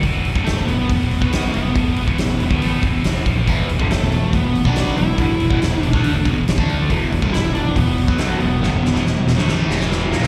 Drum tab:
HH |o-o-o-o-o-o-o-o-|o-o-o-o-o-o-o-o-|o-o-o-o-o-o-o-o-|o-o-o-o-o-o-o-o-|
SD |----o-------o---|----o-------o---|----o-------o---|----o-------o---|
BD |o--o----o--o----|o--o---o--o---o-|o--o----o--o----|o--o---o--o--o--|

HH |o-o-o-o-o-o-o-o-|----------------|
SD |----o-------o---|o-ooo-ooo-ooo-oo|
BD |o--o----o--o----|----------------|